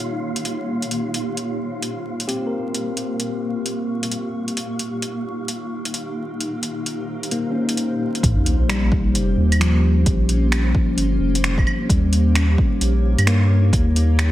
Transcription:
Already playing: ambient pad A#3 D#4 G4 C#5, synth texture F4 F5
0.36 closed hi-hat
0.45 closed hi-hat
0.82 closed hi-hat
0.90 ambient pad C5, closed hi-hat
1.14 closed hi-hat
1.37 closed hi-hat
1.82 closed hi-hat
2.20 closed hi-hat
2.27 tine electric piano C4 G4, closed hi-hat
2.47 tine electric piano A#4
2.74 ambient pad C#6, closed hi-hat
2.97 closed hi-hat
3.20 closed hi-hat
3.66 closed hi-hat
4.03 closed hi-hat
4.12 closed hi-hat
4.48 closed hi-hat
4.56 ambient pad A#3 D#4 G4, closed hi-hat
4.79 closed hi-hat
5.02 closed hi-hat
5.48 closed hi-hat
5.85 closed hi-hat
5.94 closed hi-hat
6.40 ambient pad C5, closed hi-hat
6.63 closed hi-hat
6.86 closed hi-hat
7.23 closed hi-hat
7.31 tine electric piano A#3, closed hi-hat
7.51 tine electric piano C#4
7.65 tine electric piano D#4
7.69 closed hi-hat
7.77 closed hi-hat
8.15 closed hi-hat
8.22 sub bass A#1, ambient pad A#3 C#4 G4 C5, kick, closed hi-hat, sub drop
8.46 closed hi-hat
8.69 tine electric piano G3, finger snap, closed hi-hat, claves
8.92 kick
9.14 sub bass F1, closed hi-hat
9.37 sub bass D#2
9.52 closed hi-hat, claves
9.60 tine electric piano F3, finger snap, closed hi-hat
10.06 sub bass A#1, kick, closed hi-hat
10.29 closed hi-hat
10.52 finger snap, closed hi-hat, claves
10.75 kick
10.97 sub bass G1, closed hi-hat
11.20 sub bass F1
11.35 closed hi-hat
11.44 finger snap, closed hi-hat
11.58 kick, claves
11.67 claves
11.89 sub bass D#2, tine electric piano G3, ambient pad D#4 C#5, kick, closed hi-hat
12.13 closed hi-hat
12.35 finger snap, closed hi-hat, claves
12.58 kick
12.80 sub bass A#1, closed hi-hat
13.18 sub bass G2, closed hi-hat, claves
13.27 tine electric piano A#3, finger snap, closed hi-hat
13.72 sub bass D#2, ambient pad C5, kick, closed hi-hat
13.96 closed hi-hat
14.19 finger snap, closed hi-hat, claves

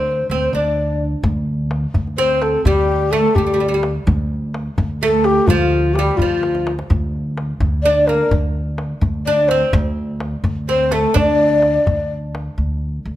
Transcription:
Already playing: upright bass D2, oud C4, ney C5
0.30 upright bass D2, oud C4, ney C5
0.53 upright bass D2, oud D4, ney D5
1.24 upright bass D2, tombak dum
1.71 tombak tek
1.94 upright bass D2, tombak dum
2.07 tombak ka
2.18 oud C4, ney C5, tombak ka
2.42 ney A4, tombak tek
2.65 upright bass D2, oud G3, ney G4, tombak dum
3.11 oud A3, ney A4, tombak tek
3.35 upright bass D2, oud G3, ney G4, tombak dum
3.47 oud G3, tombak ka
3.54 oud G3
3.60 oud G3, tombak ka
3.68 oud G3
3.74 oud G3
3.83 tombak tek
4.07 upright bass D2, tombak dum
4.54 tombak tek
4.78 upright bass D2, tombak dum
5.01 oud A3, ney A4, tombak ka
5.24 ney G4, tombak tek
5.47 upright bass D2, oud F3, ney F4, tombak dum
5.94 ney G4, tombak tek
5.99 oud G3
6.17 upright bass D2, ney F4, tombak dum
6.22 oud F3
6.31 tombak ka
6.43 tombak tek
6.55 tombak ka
6.67 tombak tek
6.79 tombak ka
6.90 upright bass D2, tombak dum
7.38 tombak tek
7.60 upright bass D2, tombak dum
7.72 tombak ka
7.83 oud D4, ney D5, tombak ka
8.07 oud A#3, ney A#4, tombak tek
8.31 upright bass D2, tombak dum
8.78 tombak tek
9.01 upright bass D2, tombak dum
9.14 tombak ka
9.25 oud D4, ney D5, tombak ka
9.48 oud C4, ney C5, tombak tek
9.73 upright bass D2, tombak dum
10.20 tombak tek
10.44 upright bass D2, tombak dum
10.57 tombak ka
10.69 oud C4, ney C5, tombak ka
10.91 oud A3, ney A4, tombak tek
11.14 upright bass D2, oud D4, ney D5, tombak dum
11.40 tombak ka
11.62 tombak tek
11.87 upright bass D2, tombak dum
11.99 tombak ka
12.35 tombak tek
12.58 upright bass D2
13.05 upright bass D2

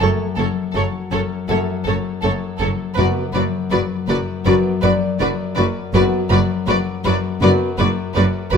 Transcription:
Already playing: harp F#3, music box F5
0.00 double bass section F#1, cello section F#2, harp F#2, french horn section A3 A4, violin section A4 C#5, viola section A4, music box G#5
0.37 double bass section F#1, cello section F#2, harp F#2, violin section A4 C#5, viola section A4
0.74 double bass section F#1, cello section F#2, harp F#3, violin section A4 C#5, viola section A4
1.12 double bass section F#1, cello section F#2, harp F#2, violin section A4 C#5, viola section A4
1.49 double bass section F#1, cello section F#2, harp F#2, french horn section A3 A4, violin section A4 C#5, viola section A4, music box F#5
1.86 double bass section F#1, harp F#2, cello section F#2, violin section A4 C#5, viola section A4
2.23 double bass section F#1, cello section F#2, harp F#2, violin section A4 C#5, viola section A4
2.59 double bass section F#1, harp F#2, cello section F#2, violin section A4 C#5, viola section A4
2.96 double bass section F#1, cello section F#2, harp F#2, timpani F#2, french horn section B3 F#4, viola section F#4, violin section B4 D5
3.34 double bass section F#1, cello section F#2, harp F#2, viola section F#4, violin section B4 D5
3.71 double bass section F#1, cello section F#2, harp F#3, viola section F#4, violin section B4 D5
4.08 double bass section F#1, cello section F#2, harp F#2, viola section F#4, violin section B4 D5
4.45 double bass section F#1, cello section F#2, harp F#2, french horn section B3 F#4, viola section F#4, violin section B4 D5
4.82 double bass section F#1, cello section F#2, harp F#2, viola section F#4, violin section B4 D5, music box D5
5.19 double bass section F#1, harp F#2, cello section F#2, viola section F#4, violin section B4 D5
5.56 double bass section F#1, cello section F#2, harp F#2, viola section F#4, violin section B4 D5
5.94 double bass section F#1, cello section F#2, harp F#2, french horn section B3 F#4, viola section F#4, violin section B4 D5
6.30 double bass section F#1, cello section F#2, harp F#2, viola section F#4, violin section B4 D5
6.67 double bass section F#1, cello section F#2, harp F#3, viola section F#4, violin section B4 D5
7.05 double bass section F#1, cello section F#2, harp F#2, viola section F#4, violin section B4 D5
7.42 double bass section F#1, cello section F#2, harp F#2, french horn section B3 F#4, viola section F#4, violin section B4 D5
7.78 double bass section F#1, harp F#2, cello section F#2, viola section F#4, violin section B4 D5
8.15 double bass section F#1, harp F#2, cello section F#2, viola section F#4, violin section B4 D5
8.52 double bass section F#1, cello section F#2, harp F#2, viola section F#4, violin section B4 D5

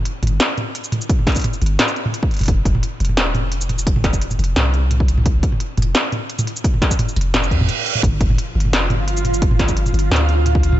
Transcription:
0.05 closed hi-hat
0.23 808-style bass G1, closed hi-hat, mid tom
0.27 closed hi-hat
0.40 snare, closed hi-hat
0.58 closed hi-hat, mid tom
0.75 closed hi-hat
0.84 shaker
0.92 closed hi-hat, mid tom
1.01 shaker
1.09 kick, closed hi-hat
1.19 mid tom
1.27 kick, snare, closed hi-hat
1.30 closed hi-hat
1.32 closed hi-hat
1.35 kick, closed hi-hat, shaker
1.37 closed hi-hat
1.40 closed hi-hat
1.42 closed hi-hat
1.44 closed hi-hat, mid tom
1.53 shaker
1.62 808-style bass G1, closed hi-hat
1.66 closed hi-hat
1.79 snare, closed hi-hat, mid tom
1.88 shaker
1.96 closed hi-hat
2.06 mid tom
2.14 closed hi-hat
2.23 kick
2.31 closed hi-hat
2.34 closed hi-hat
2.37 closed hi-hat
2.39 808-style bass F1, closed hi-hat, mid tom
2.41 closed hi-hat
2.43 closed hi-hat
2.46 closed hi-hat
2.48 808-style bass F1, kick, closed hi-hat, mid tom
2.65 kick, closed hi-hat
2.75 mid tom
2.83 closed hi-hat
3.00 808-style bass F1, closed hi-hat
3.05 closed hi-hat
3.09 mid tom
3.17 808-style bass D#1, snare, closed hi-hat
3.35 808-style bass F1, closed hi-hat, mid tom
3.52 closed hi-hat
3.61 shaker
3.69 closed hi-hat, mid tom
3.79 shaker
3.87 kick, closed hi-hat
3.96 mid tom
4.04 kick, snare, closed hi-hat
4.13 kick, shaker
4.22 closed hi-hat
4.31 mid tom, shaker
4.39 808-style bass F1, closed hi-hat
4.44 closed hi-hat
4.56 808-style bass C2, snare, closed hi-hat, mid tom
4.74 closed hi-hat
4.91 closed hi-hat, mid tom
5.00 kick
5.08 closed hi-hat
5.18 mid tom
5.26 kick, closed hi-hat
5.43 kick, closed hi-hat
5.52 mid tom
5.60 closed hi-hat
5.78 808-style bass F1, closed hi-hat, mid tom
5.82 closed hi-hat
5.95 snare, closed hi-hat
6.12 closed hi-hat, mid tom
6.30 closed hi-hat
6.39 mid tom, shaker
6.47 closed hi-hat
6.56 shaker
6.64 kick, closed hi-hat
6.74 mid tom
6.82 kick, snare, closed hi-hat
6.91 kick, shaker
6.99 closed hi-hat, mid tom
7.08 shaker
7.16 808-style bass F1, closed hi-hat
7.21 closed hi-hat
7.34 snare, closed hi-hat, mid tom, reverse cymbal
7.43 shaker
7.51 808-style bass F2, kick, closed hi-hat
7.61 mid tom
7.69 closed hi-hat
7.86 closed hi-hat
7.95 mid tom
8.03 808-style bass G1, synth texture F3 F4, kick, closed hi-hat, mid tom
8.21 kick, closed hi-hat
8.30 mid tom
8.38 closed hi-hat
8.55 808-style bass G1
8.60 closed hi-hat
8.65 mid tom
8.72 808-style bass F1, snare, closed hi-hat
8.90 808-style bass G1, closed hi-hat, mid tom
9.08 closed hi-hat
9.17 shaker
9.25 closed hi-hat, mid tom
9.34 shaker
9.42 kick, closed hi-hat
9.51 mid tom
9.59 kick, snare, closed hi-hat
9.68 kick, shaker
9.77 closed hi-hat
9.86 mid tom, shaker
9.94 808-style bass G1, closed hi-hat
9.99 closed hi-hat
10.11 808-style bass D2, snare, mid tom
10.16 closed hi-hat
10.29 closed hi-hat
10.46 closed hi-hat, mid tom
10.55 kick
10.63 closed hi-hat
10.72 mid tom

